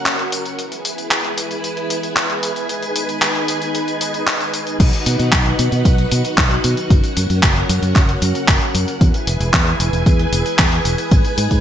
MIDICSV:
0, 0, Header, 1, 4, 480
1, 0, Start_track
1, 0, Key_signature, 5, "major"
1, 0, Tempo, 526316
1, 537, Time_signature, 4, 2, 24, 8
1, 10584, End_track
2, 0, Start_track
2, 0, Title_t, "String machine"
2, 0, Program_c, 0, 50
2, 0, Note_on_c, 0, 61, 77
2, 0, Note_on_c, 0, 66, 70
2, 0, Note_on_c, 0, 70, 70
2, 0, Note_on_c, 0, 78, 82
2, 501, Note_off_c, 0, 66, 0
2, 518, Note_off_c, 0, 61, 0
2, 518, Note_off_c, 0, 70, 0
2, 519, Note_off_c, 0, 78, 0
2, 536, Note_on_c, 0, 80, 87
2, 537, Note_on_c, 0, 64, 76
2, 537, Note_on_c, 0, 68, 70
2, 537, Note_on_c, 0, 71, 69
2, 2438, Note_off_c, 0, 64, 0
2, 2456, Note_on_c, 0, 63, 73
2, 4340, Note_off_c, 0, 68, 0
2, 4340, Note_off_c, 0, 80, 0
2, 4341, Note_off_c, 0, 71, 0
2, 4357, Note_off_c, 0, 63, 0
2, 4377, Note_on_c, 0, 78, 88
2, 4378, Note_on_c, 0, 63, 81
2, 4378, Note_on_c, 0, 66, 74
2, 4378, Note_on_c, 0, 71, 76
2, 6278, Note_off_c, 0, 63, 0
2, 6278, Note_off_c, 0, 71, 0
2, 6278, Note_off_c, 0, 78, 0
2, 6295, Note_on_c, 0, 70, 75
2, 6295, Note_on_c, 0, 78, 92
2, 6296, Note_on_c, 0, 61, 78
2, 8181, Note_off_c, 0, 66, 0
2, 8197, Note_off_c, 0, 61, 0
2, 8197, Note_off_c, 0, 70, 0
2, 8197, Note_off_c, 0, 78, 0
2, 8217, Note_on_c, 0, 64, 81
2, 8217, Note_on_c, 0, 68, 73
2, 8217, Note_on_c, 0, 71, 72
2, 8217, Note_on_c, 0, 80, 87
2, 10118, Note_off_c, 0, 64, 0
2, 10136, Note_on_c, 0, 63, 78
2, 10584, Note_off_c, 0, 63, 0
2, 10584, Note_off_c, 0, 68, 0
2, 10584, Note_off_c, 0, 71, 0
2, 10584, Note_off_c, 0, 80, 0
2, 10584, End_track
3, 0, Start_track
3, 0, Title_t, "Fingered electric bass"
3, 0, Program_c, 1, 33
3, 4377, Note_on_c, 1, 35, 99
3, 4463, Note_off_c, 1, 35, 0
3, 4618, Note_on_c, 1, 47, 81
3, 4703, Note_off_c, 1, 47, 0
3, 4739, Note_on_c, 1, 47, 85
3, 4824, Note_off_c, 1, 47, 0
3, 4857, Note_on_c, 1, 35, 87
3, 5029, Note_off_c, 1, 35, 0
3, 5099, Note_on_c, 1, 47, 104
3, 5184, Note_off_c, 1, 47, 0
3, 5219, Note_on_c, 1, 47, 105
3, 5304, Note_off_c, 1, 47, 0
3, 5337, Note_on_c, 1, 35, 88
3, 5509, Note_off_c, 1, 35, 0
3, 5579, Note_on_c, 1, 47, 95
3, 5664, Note_off_c, 1, 47, 0
3, 5817, Note_on_c, 1, 35, 98
3, 5989, Note_off_c, 1, 35, 0
3, 6058, Note_on_c, 1, 47, 90
3, 6144, Note_off_c, 1, 47, 0
3, 6296, Note_on_c, 1, 30, 97
3, 6383, Note_off_c, 1, 30, 0
3, 6538, Note_on_c, 1, 42, 78
3, 6623, Note_off_c, 1, 42, 0
3, 6658, Note_on_c, 1, 42, 87
3, 6743, Note_off_c, 1, 42, 0
3, 6776, Note_on_c, 1, 30, 86
3, 6949, Note_off_c, 1, 30, 0
3, 7016, Note_on_c, 1, 42, 100
3, 7102, Note_off_c, 1, 42, 0
3, 7135, Note_on_c, 1, 42, 106
3, 7222, Note_off_c, 1, 42, 0
3, 7256, Note_on_c, 1, 30, 81
3, 7428, Note_off_c, 1, 30, 0
3, 7495, Note_on_c, 1, 42, 90
3, 7582, Note_off_c, 1, 42, 0
3, 7736, Note_on_c, 1, 30, 88
3, 7823, Note_off_c, 1, 30, 0
3, 7976, Note_on_c, 1, 42, 87
3, 8063, Note_off_c, 1, 42, 0
3, 8216, Note_on_c, 1, 40, 94
3, 8303, Note_off_c, 1, 40, 0
3, 8455, Note_on_c, 1, 28, 78
3, 8542, Note_off_c, 1, 28, 0
3, 8576, Note_on_c, 1, 28, 89
3, 8662, Note_off_c, 1, 28, 0
3, 8696, Note_on_c, 1, 40, 85
3, 8869, Note_off_c, 1, 40, 0
3, 8935, Note_on_c, 1, 28, 105
3, 9022, Note_off_c, 1, 28, 0
3, 9055, Note_on_c, 1, 28, 106
3, 9142, Note_off_c, 1, 28, 0
3, 9176, Note_on_c, 1, 40, 87
3, 9349, Note_off_c, 1, 40, 0
3, 9414, Note_on_c, 1, 28, 98
3, 9502, Note_off_c, 1, 28, 0
3, 9657, Note_on_c, 1, 40, 97
3, 9829, Note_off_c, 1, 40, 0
3, 9896, Note_on_c, 1, 28, 90
3, 9983, Note_off_c, 1, 28, 0
3, 10136, Note_on_c, 1, 32, 99
3, 10223, Note_off_c, 1, 32, 0
3, 10375, Note_on_c, 1, 44, 80
3, 10462, Note_off_c, 1, 44, 0
3, 10497, Note_on_c, 1, 44, 83
3, 10583, Note_off_c, 1, 44, 0
3, 10584, End_track
4, 0, Start_track
4, 0, Title_t, "Drums"
4, 54, Note_on_c, 9, 39, 107
4, 54, Note_on_c, 9, 42, 61
4, 54, Note_on_c, 9, 54, 38
4, 146, Note_off_c, 9, 39, 0
4, 146, Note_off_c, 9, 42, 0
4, 146, Note_off_c, 9, 54, 0
4, 175, Note_on_c, 9, 42, 36
4, 266, Note_off_c, 9, 42, 0
4, 295, Note_on_c, 9, 42, 80
4, 295, Note_on_c, 9, 54, 65
4, 386, Note_off_c, 9, 42, 0
4, 386, Note_off_c, 9, 54, 0
4, 415, Note_on_c, 9, 42, 38
4, 415, Note_on_c, 9, 54, 29
4, 506, Note_off_c, 9, 42, 0
4, 506, Note_off_c, 9, 54, 0
4, 535, Note_on_c, 9, 42, 64
4, 535, Note_on_c, 9, 54, 38
4, 626, Note_off_c, 9, 42, 0
4, 626, Note_off_c, 9, 54, 0
4, 655, Note_on_c, 9, 42, 38
4, 655, Note_on_c, 9, 54, 28
4, 746, Note_off_c, 9, 42, 0
4, 746, Note_off_c, 9, 54, 0
4, 775, Note_on_c, 9, 42, 90
4, 775, Note_on_c, 9, 54, 70
4, 866, Note_off_c, 9, 42, 0
4, 866, Note_off_c, 9, 54, 0
4, 895, Note_on_c, 9, 42, 37
4, 895, Note_on_c, 9, 54, 30
4, 986, Note_off_c, 9, 42, 0
4, 986, Note_off_c, 9, 54, 0
4, 1015, Note_on_c, 9, 39, 108
4, 1015, Note_on_c, 9, 42, 64
4, 1015, Note_on_c, 9, 54, 40
4, 1106, Note_off_c, 9, 39, 0
4, 1106, Note_off_c, 9, 42, 0
4, 1106, Note_off_c, 9, 54, 0
4, 1135, Note_on_c, 9, 42, 40
4, 1226, Note_off_c, 9, 42, 0
4, 1254, Note_on_c, 9, 42, 91
4, 1254, Note_on_c, 9, 54, 69
4, 1346, Note_off_c, 9, 42, 0
4, 1346, Note_off_c, 9, 54, 0
4, 1375, Note_on_c, 9, 42, 38
4, 1375, Note_on_c, 9, 54, 28
4, 1466, Note_off_c, 9, 42, 0
4, 1466, Note_off_c, 9, 54, 0
4, 1495, Note_on_c, 9, 42, 60
4, 1495, Note_on_c, 9, 54, 39
4, 1587, Note_off_c, 9, 42, 0
4, 1587, Note_off_c, 9, 54, 0
4, 1615, Note_on_c, 9, 42, 39
4, 1706, Note_off_c, 9, 42, 0
4, 1735, Note_on_c, 9, 42, 88
4, 1735, Note_on_c, 9, 54, 66
4, 1826, Note_off_c, 9, 42, 0
4, 1826, Note_off_c, 9, 54, 0
4, 1854, Note_on_c, 9, 42, 39
4, 1854, Note_on_c, 9, 54, 30
4, 1946, Note_off_c, 9, 42, 0
4, 1946, Note_off_c, 9, 54, 0
4, 1975, Note_on_c, 9, 39, 108
4, 1975, Note_on_c, 9, 42, 67
4, 1975, Note_on_c, 9, 54, 40
4, 2066, Note_off_c, 9, 39, 0
4, 2066, Note_off_c, 9, 42, 0
4, 2066, Note_off_c, 9, 54, 0
4, 2095, Note_on_c, 9, 42, 38
4, 2186, Note_off_c, 9, 42, 0
4, 2216, Note_on_c, 9, 42, 88
4, 2216, Note_on_c, 9, 54, 64
4, 2307, Note_off_c, 9, 42, 0
4, 2307, Note_off_c, 9, 54, 0
4, 2336, Note_on_c, 9, 42, 39
4, 2336, Note_on_c, 9, 54, 28
4, 2427, Note_off_c, 9, 42, 0
4, 2427, Note_off_c, 9, 54, 0
4, 2456, Note_on_c, 9, 42, 66
4, 2456, Note_on_c, 9, 54, 37
4, 2548, Note_off_c, 9, 42, 0
4, 2548, Note_off_c, 9, 54, 0
4, 2576, Note_on_c, 9, 42, 38
4, 2576, Note_on_c, 9, 54, 28
4, 2668, Note_off_c, 9, 42, 0
4, 2668, Note_off_c, 9, 54, 0
4, 2696, Note_on_c, 9, 42, 94
4, 2696, Note_on_c, 9, 54, 67
4, 2788, Note_off_c, 9, 42, 0
4, 2788, Note_off_c, 9, 54, 0
4, 2817, Note_on_c, 9, 42, 40
4, 2817, Note_on_c, 9, 54, 28
4, 2908, Note_off_c, 9, 42, 0
4, 2908, Note_off_c, 9, 54, 0
4, 2937, Note_on_c, 9, 39, 104
4, 2937, Note_on_c, 9, 42, 67
4, 2937, Note_on_c, 9, 54, 38
4, 3028, Note_off_c, 9, 39, 0
4, 3028, Note_off_c, 9, 42, 0
4, 3028, Note_off_c, 9, 54, 0
4, 3057, Note_on_c, 9, 42, 39
4, 3149, Note_off_c, 9, 42, 0
4, 3177, Note_on_c, 9, 42, 94
4, 3177, Note_on_c, 9, 54, 69
4, 3268, Note_off_c, 9, 42, 0
4, 3268, Note_off_c, 9, 54, 0
4, 3298, Note_on_c, 9, 42, 36
4, 3298, Note_on_c, 9, 54, 27
4, 3389, Note_off_c, 9, 42, 0
4, 3389, Note_off_c, 9, 54, 0
4, 3417, Note_on_c, 9, 42, 64
4, 3417, Note_on_c, 9, 54, 38
4, 3508, Note_off_c, 9, 42, 0
4, 3508, Note_off_c, 9, 54, 0
4, 3537, Note_on_c, 9, 42, 41
4, 3537, Note_on_c, 9, 54, 27
4, 3628, Note_off_c, 9, 42, 0
4, 3628, Note_off_c, 9, 54, 0
4, 3657, Note_on_c, 9, 42, 90
4, 3657, Note_on_c, 9, 54, 68
4, 3748, Note_off_c, 9, 42, 0
4, 3748, Note_off_c, 9, 54, 0
4, 3777, Note_on_c, 9, 42, 38
4, 3777, Note_on_c, 9, 54, 28
4, 3868, Note_off_c, 9, 42, 0
4, 3868, Note_off_c, 9, 54, 0
4, 3897, Note_on_c, 9, 39, 110
4, 3897, Note_on_c, 9, 42, 68
4, 3897, Note_on_c, 9, 54, 40
4, 3989, Note_off_c, 9, 39, 0
4, 3989, Note_off_c, 9, 42, 0
4, 3989, Note_off_c, 9, 54, 0
4, 4017, Note_on_c, 9, 42, 38
4, 4017, Note_on_c, 9, 54, 26
4, 4109, Note_off_c, 9, 42, 0
4, 4109, Note_off_c, 9, 54, 0
4, 4136, Note_on_c, 9, 42, 86
4, 4136, Note_on_c, 9, 54, 64
4, 4227, Note_off_c, 9, 42, 0
4, 4227, Note_off_c, 9, 54, 0
4, 4257, Note_on_c, 9, 42, 39
4, 4257, Note_on_c, 9, 54, 28
4, 4348, Note_off_c, 9, 42, 0
4, 4348, Note_off_c, 9, 54, 0
4, 4377, Note_on_c, 9, 36, 121
4, 4377, Note_on_c, 9, 42, 67
4, 4377, Note_on_c, 9, 49, 106
4, 4377, Note_on_c, 9, 54, 40
4, 4468, Note_off_c, 9, 36, 0
4, 4468, Note_off_c, 9, 42, 0
4, 4468, Note_off_c, 9, 49, 0
4, 4468, Note_off_c, 9, 54, 0
4, 4498, Note_on_c, 9, 42, 40
4, 4498, Note_on_c, 9, 54, 27
4, 4589, Note_off_c, 9, 42, 0
4, 4589, Note_off_c, 9, 54, 0
4, 4617, Note_on_c, 9, 42, 99
4, 4617, Note_on_c, 9, 54, 68
4, 4709, Note_off_c, 9, 42, 0
4, 4709, Note_off_c, 9, 54, 0
4, 4738, Note_on_c, 9, 42, 42
4, 4738, Note_on_c, 9, 54, 29
4, 4829, Note_off_c, 9, 42, 0
4, 4829, Note_off_c, 9, 54, 0
4, 4857, Note_on_c, 9, 36, 119
4, 4857, Note_on_c, 9, 39, 120
4, 4857, Note_on_c, 9, 42, 68
4, 4857, Note_on_c, 9, 54, 39
4, 4948, Note_off_c, 9, 36, 0
4, 4948, Note_off_c, 9, 39, 0
4, 4948, Note_off_c, 9, 42, 0
4, 4948, Note_off_c, 9, 54, 0
4, 4978, Note_on_c, 9, 42, 43
4, 5069, Note_off_c, 9, 42, 0
4, 5097, Note_on_c, 9, 42, 100
4, 5097, Note_on_c, 9, 54, 72
4, 5189, Note_off_c, 9, 42, 0
4, 5189, Note_off_c, 9, 54, 0
4, 5217, Note_on_c, 9, 42, 40
4, 5217, Note_on_c, 9, 54, 29
4, 5309, Note_off_c, 9, 42, 0
4, 5309, Note_off_c, 9, 54, 0
4, 5337, Note_on_c, 9, 36, 124
4, 5338, Note_on_c, 9, 42, 67
4, 5338, Note_on_c, 9, 54, 41
4, 5428, Note_off_c, 9, 36, 0
4, 5429, Note_off_c, 9, 42, 0
4, 5429, Note_off_c, 9, 54, 0
4, 5457, Note_on_c, 9, 42, 43
4, 5548, Note_off_c, 9, 42, 0
4, 5577, Note_on_c, 9, 42, 97
4, 5577, Note_on_c, 9, 54, 69
4, 5668, Note_off_c, 9, 42, 0
4, 5668, Note_off_c, 9, 54, 0
4, 5697, Note_on_c, 9, 42, 43
4, 5697, Note_on_c, 9, 54, 31
4, 5788, Note_off_c, 9, 42, 0
4, 5788, Note_off_c, 9, 54, 0
4, 5817, Note_on_c, 9, 36, 122
4, 5817, Note_on_c, 9, 39, 123
4, 5817, Note_on_c, 9, 42, 70
4, 5817, Note_on_c, 9, 54, 41
4, 5908, Note_off_c, 9, 36, 0
4, 5908, Note_off_c, 9, 39, 0
4, 5908, Note_off_c, 9, 42, 0
4, 5908, Note_off_c, 9, 54, 0
4, 5937, Note_on_c, 9, 42, 40
4, 6028, Note_off_c, 9, 42, 0
4, 6056, Note_on_c, 9, 42, 96
4, 6056, Note_on_c, 9, 54, 71
4, 6147, Note_off_c, 9, 42, 0
4, 6147, Note_off_c, 9, 54, 0
4, 6177, Note_on_c, 9, 42, 42
4, 6177, Note_on_c, 9, 54, 30
4, 6268, Note_off_c, 9, 42, 0
4, 6268, Note_off_c, 9, 54, 0
4, 6296, Note_on_c, 9, 36, 122
4, 6297, Note_on_c, 9, 42, 66
4, 6297, Note_on_c, 9, 54, 37
4, 6388, Note_off_c, 9, 36, 0
4, 6388, Note_off_c, 9, 42, 0
4, 6388, Note_off_c, 9, 54, 0
4, 6417, Note_on_c, 9, 42, 40
4, 6417, Note_on_c, 9, 54, 27
4, 6508, Note_off_c, 9, 42, 0
4, 6508, Note_off_c, 9, 54, 0
4, 6536, Note_on_c, 9, 42, 97
4, 6536, Note_on_c, 9, 54, 68
4, 6627, Note_off_c, 9, 42, 0
4, 6627, Note_off_c, 9, 54, 0
4, 6657, Note_on_c, 9, 42, 39
4, 6657, Note_on_c, 9, 54, 29
4, 6748, Note_off_c, 9, 42, 0
4, 6748, Note_off_c, 9, 54, 0
4, 6776, Note_on_c, 9, 36, 127
4, 6778, Note_on_c, 9, 39, 124
4, 6778, Note_on_c, 9, 42, 69
4, 6778, Note_on_c, 9, 54, 41
4, 6867, Note_off_c, 9, 36, 0
4, 6869, Note_off_c, 9, 39, 0
4, 6869, Note_off_c, 9, 42, 0
4, 6869, Note_off_c, 9, 54, 0
4, 6898, Note_on_c, 9, 42, 42
4, 6989, Note_off_c, 9, 42, 0
4, 7018, Note_on_c, 9, 42, 95
4, 7018, Note_on_c, 9, 54, 70
4, 7109, Note_off_c, 9, 42, 0
4, 7109, Note_off_c, 9, 54, 0
4, 7137, Note_on_c, 9, 42, 39
4, 7137, Note_on_c, 9, 54, 29
4, 7228, Note_off_c, 9, 42, 0
4, 7228, Note_off_c, 9, 54, 0
4, 7256, Note_on_c, 9, 36, 122
4, 7257, Note_on_c, 9, 39, 65
4, 7257, Note_on_c, 9, 42, 67
4, 7257, Note_on_c, 9, 54, 38
4, 7347, Note_off_c, 9, 36, 0
4, 7348, Note_off_c, 9, 39, 0
4, 7348, Note_off_c, 9, 42, 0
4, 7348, Note_off_c, 9, 54, 0
4, 7377, Note_on_c, 9, 42, 43
4, 7468, Note_off_c, 9, 42, 0
4, 7496, Note_on_c, 9, 42, 89
4, 7496, Note_on_c, 9, 54, 65
4, 7587, Note_off_c, 9, 42, 0
4, 7587, Note_off_c, 9, 54, 0
4, 7617, Note_on_c, 9, 42, 40
4, 7617, Note_on_c, 9, 54, 29
4, 7708, Note_off_c, 9, 42, 0
4, 7708, Note_off_c, 9, 54, 0
4, 7736, Note_on_c, 9, 36, 126
4, 7737, Note_on_c, 9, 39, 127
4, 7737, Note_on_c, 9, 42, 66
4, 7737, Note_on_c, 9, 54, 39
4, 7827, Note_off_c, 9, 36, 0
4, 7828, Note_off_c, 9, 39, 0
4, 7828, Note_off_c, 9, 42, 0
4, 7828, Note_off_c, 9, 54, 0
4, 7858, Note_on_c, 9, 42, 39
4, 7949, Note_off_c, 9, 42, 0
4, 7977, Note_on_c, 9, 42, 92
4, 7977, Note_on_c, 9, 54, 67
4, 8068, Note_off_c, 9, 42, 0
4, 8068, Note_off_c, 9, 54, 0
4, 8098, Note_on_c, 9, 42, 41
4, 8098, Note_on_c, 9, 54, 30
4, 8189, Note_off_c, 9, 42, 0
4, 8189, Note_off_c, 9, 54, 0
4, 8216, Note_on_c, 9, 36, 122
4, 8218, Note_on_c, 9, 42, 64
4, 8218, Note_on_c, 9, 54, 36
4, 8308, Note_off_c, 9, 36, 0
4, 8309, Note_off_c, 9, 42, 0
4, 8309, Note_off_c, 9, 54, 0
4, 8337, Note_on_c, 9, 42, 38
4, 8337, Note_on_c, 9, 54, 26
4, 8428, Note_off_c, 9, 42, 0
4, 8428, Note_off_c, 9, 54, 0
4, 8457, Note_on_c, 9, 42, 95
4, 8457, Note_on_c, 9, 54, 69
4, 8548, Note_off_c, 9, 42, 0
4, 8548, Note_off_c, 9, 54, 0
4, 8578, Note_on_c, 9, 42, 40
4, 8578, Note_on_c, 9, 54, 30
4, 8669, Note_off_c, 9, 42, 0
4, 8669, Note_off_c, 9, 54, 0
4, 8697, Note_on_c, 9, 36, 127
4, 8697, Note_on_c, 9, 39, 126
4, 8697, Note_on_c, 9, 42, 66
4, 8697, Note_on_c, 9, 54, 38
4, 8788, Note_off_c, 9, 36, 0
4, 8788, Note_off_c, 9, 39, 0
4, 8788, Note_off_c, 9, 42, 0
4, 8788, Note_off_c, 9, 54, 0
4, 8817, Note_on_c, 9, 42, 41
4, 8909, Note_off_c, 9, 42, 0
4, 8938, Note_on_c, 9, 42, 94
4, 8938, Note_on_c, 9, 54, 70
4, 9029, Note_off_c, 9, 42, 0
4, 9029, Note_off_c, 9, 54, 0
4, 9058, Note_on_c, 9, 42, 39
4, 9058, Note_on_c, 9, 54, 28
4, 9149, Note_off_c, 9, 42, 0
4, 9149, Note_off_c, 9, 54, 0
4, 9177, Note_on_c, 9, 36, 124
4, 9177, Note_on_c, 9, 42, 64
4, 9177, Note_on_c, 9, 54, 38
4, 9268, Note_off_c, 9, 36, 0
4, 9268, Note_off_c, 9, 42, 0
4, 9268, Note_off_c, 9, 54, 0
4, 9298, Note_on_c, 9, 42, 41
4, 9389, Note_off_c, 9, 42, 0
4, 9417, Note_on_c, 9, 42, 88
4, 9417, Note_on_c, 9, 54, 65
4, 9509, Note_off_c, 9, 42, 0
4, 9509, Note_off_c, 9, 54, 0
4, 9537, Note_on_c, 9, 42, 38
4, 9537, Note_on_c, 9, 54, 28
4, 9628, Note_off_c, 9, 42, 0
4, 9628, Note_off_c, 9, 54, 0
4, 9657, Note_on_c, 9, 36, 127
4, 9657, Note_on_c, 9, 39, 127
4, 9657, Note_on_c, 9, 42, 66
4, 9657, Note_on_c, 9, 54, 39
4, 9748, Note_off_c, 9, 36, 0
4, 9748, Note_off_c, 9, 39, 0
4, 9748, Note_off_c, 9, 42, 0
4, 9748, Note_off_c, 9, 54, 0
4, 9776, Note_on_c, 9, 42, 40
4, 9867, Note_off_c, 9, 42, 0
4, 9896, Note_on_c, 9, 42, 91
4, 9896, Note_on_c, 9, 54, 66
4, 9987, Note_off_c, 9, 42, 0
4, 9987, Note_off_c, 9, 54, 0
4, 10016, Note_on_c, 9, 42, 38
4, 10016, Note_on_c, 9, 54, 30
4, 10108, Note_off_c, 9, 42, 0
4, 10108, Note_off_c, 9, 54, 0
4, 10136, Note_on_c, 9, 42, 61
4, 10136, Note_on_c, 9, 54, 39
4, 10137, Note_on_c, 9, 36, 127
4, 10228, Note_off_c, 9, 36, 0
4, 10228, Note_off_c, 9, 42, 0
4, 10228, Note_off_c, 9, 54, 0
4, 10256, Note_on_c, 9, 42, 37
4, 10256, Note_on_c, 9, 54, 27
4, 10347, Note_off_c, 9, 42, 0
4, 10347, Note_off_c, 9, 54, 0
4, 10376, Note_on_c, 9, 42, 94
4, 10376, Note_on_c, 9, 54, 69
4, 10467, Note_off_c, 9, 42, 0
4, 10467, Note_off_c, 9, 54, 0
4, 10496, Note_on_c, 9, 42, 39
4, 10496, Note_on_c, 9, 54, 29
4, 10497, Note_on_c, 9, 36, 66
4, 10584, Note_off_c, 9, 36, 0
4, 10584, Note_off_c, 9, 42, 0
4, 10584, Note_off_c, 9, 54, 0
4, 10584, End_track
0, 0, End_of_file